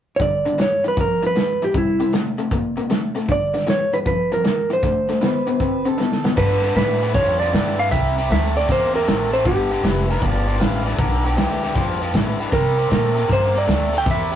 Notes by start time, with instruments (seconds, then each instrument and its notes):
0.16 overdriven electric guitar G2 D3, electric slide guitar C#5, kick, closed hi-hat
0.22 electric slide guitar D5
0.46 overdriven electric guitar G2 D3, closed hi-hat
0.58 overdriven electric guitar G2 E3, electric slide guitar C#5, snare, closed hi-hat
0.84 overdriven electric guitar G2 E3, electric slide guitar B4, closed hi-hat
0.97 overdriven electric guitar G2 F3, electric slide guitar A#4, kick, closed hi-hat
1.23 overdriven electric guitar G2 F3, closed hi-hat
1.27 electric slide guitar B4
1.36 overdriven electric guitar G2 E3, snare, closed hi-hat
1.62 overdriven electric guitar G2 E3, electric slide guitar G4, closed hi-hat
1.74 overdriven electric guitar C3 G3, electric slide guitar E4, kick, closed hi-hat
2.00 overdriven electric guitar C3 G3, closed hi-hat
2.13 overdriven electric guitar C3 A3, snare, closed hi-hat
2.38 overdriven electric guitar C3 A3, closed hi-hat
2.51 overdriven electric guitar C3 A#3, kick, closed hi-hat
2.77 overdriven electric guitar C3 A#3, closed hi-hat
2.90 overdriven electric guitar C3 A3, snare, closed hi-hat
3.15 overdriven electric guitar C3 A3, closed hi-hat
3.28 overdriven electric guitar G2 D3, electric slide guitar D5, kick, closed hi-hat
3.54 overdriven electric guitar G2 D3, snare, closed hi-hat
3.67 overdriven electric guitar G2 E3, electric slide guitar C#5, snare, closed hi-hat
3.93 overdriven electric guitar G2 E3, electric slide guitar B4, closed hi-hat
4.06 overdriven electric guitar G2 F3, electric slide guitar B4, kick, closed hi-hat
4.32 overdriven electric guitar G2 F3, electric slide guitar A#4, closed hi-hat
4.44 overdriven electric guitar G2 E3, snare, closed hi-hat
4.70 overdriven electric guitar G2 E3, electric slide guitar C5, closed hi-hat
4.83 overdriven electric guitar D3 A3, kick, closed hi-hat
5.09 overdriven electric guitar D3 A3, snare, closed hi-hat
5.21 overdriven electric guitar D3 B3, harmonica B4, snare, closed hi-hat
5.47 overdriven electric guitar D3 B3, harmonica B4, closed hi-hat
5.60 overdriven electric guitar D3 C4, kick, closed hi-hat
5.85 overdriven electric guitar D3 C4, harmonica A4, closed hi-hat
5.98 overdriven electric guitar D3 B3, snare
6.12 snare
6.24 overdriven electric guitar D3 B3, snare
6.36 overdriven electric guitar G2 D3, upright bass G2, electric slide guitar B4, kick, snare, crash
6.62 overdriven electric guitar G2 D3, closed hi-hat
6.76 overdriven electric guitar G2 E3, upright bass A2, electric slide guitar B4, snare, closed hi-hat
7.01 overdriven electric guitar G2 E3, closed hi-hat
7.14 upright bass F2, overdriven electric guitar G2 F3, electric slide guitar C#5, kick, closed hi-hat
7.40 overdriven electric guitar G2 F3, electric slide guitar D5, closed hi-hat
7.53 overdriven electric guitar G2 E3, upright bass G2, snare, closed hi-hat
7.78 overdriven electric guitar G2 E3, electric slide guitar F5, closed hi-hat
7.91 upright bass C2, overdriven electric guitar C3 G3, electric slide guitar E5, kick, closed hi-hat
8.18 overdriven electric guitar C3 G3, closed hi-hat
8.30 upright bass D2, overdriven electric guitar C3 A3, electric slide guitar E5, snare, closed hi-hat
8.56 overdriven electric guitar C3 A3, electric slide guitar D5, closed hi-hat
8.69 upright bass E2, overdriven electric guitar C3 A#3, electric slide guitar C5, kick, snare, closed hi-hat
8.94 overdriven electric guitar C3 A#3, electric slide guitar A#4, closed hi-hat
9.07 upright bass A1, overdriven electric guitar C3 A3, snare, closed hi-hat
9.33 overdriven electric guitar C3 A3, electric slide guitar C5, closed hi-hat
9.45 upright bass G1, overdriven electric guitar G2 D3, electric slide guitar G4, kick, closed hi-hat
9.71 overdriven electric guitar G2 D3, closed hi-hat
9.83 upright bass F1, overdriven electric guitar G2 E3, snare, closed hi-hat
10.09 overdriven electric guitar G2 E3, harmonica A#4, closed hi-hat
10.22 upright bass G1, overdriven electric guitar G2 F3, harmonica D5, kick, closed hi-hat
10.47 overdriven electric guitar G2 F3, closed hi-hat
10.60 upright bass A1, overdriven electric guitar G2 E3, harmonica F5, snare, closed hi-hat
10.86 overdriven electric guitar G2 E3, harmonica D5, snare, closed hi-hat
10.98 upright bass B1, overdriven electric guitar G2 D3, harmonica A#4, kick, closed hi-hat
11.24 overdriven electric guitar G2 D3, harmonica G4, closed hi-hat
11.37 upright bass D2, overdriven electric guitar G2 E3, snare, closed hi-hat
11.63 overdriven electric guitar G2 E3, snare, closed hi-hat
11.75 upright bass F2, overdriven electric guitar G2 F3, kick, snare, closed hi-hat
12.02 overdriven electric guitar G2 F3, closed hi-hat
12.14 overdriven electric guitar G2 E3, upright bass A2, kick, snare, closed hi-hat
12.39 overdriven electric guitar G2 E3, muted upright bass stroke, closed hi-hat
12.52 upright bass C3, overdriven electric guitar C3 G3, electric slide guitar A#4, kick, closed hi-hat
12.78 overdriven electric guitar C3 G3, closed hi-hat
12.90 upright bass A#2, overdriven electric guitar C3 A3, electric slide guitar A#4, snare, closed hi-hat
13.15 overdriven electric guitar C3 A3, closed hi-hat
13.28 upright bass G2, overdriven electric guitar C3 A#3, kick, closed hi-hat
13.33 electric slide guitar C5
13.54 overdriven electric guitar C3 A#3, electric slide guitar D5, closed hi-hat
13.67 upright bass D2, overdriven electric guitar C3 A3, snare, closed hi-hat
13.93 overdriven electric guitar C3 A3, closed hi-hat
13.98 electric slide guitar G5
14.06 upright bass E2, overdriven electric guitar C3 G3, kick, closed hi-hat
14.11 electric slide guitar E5
14.32 overdriven electric guitar C3 G3, closed hi-hat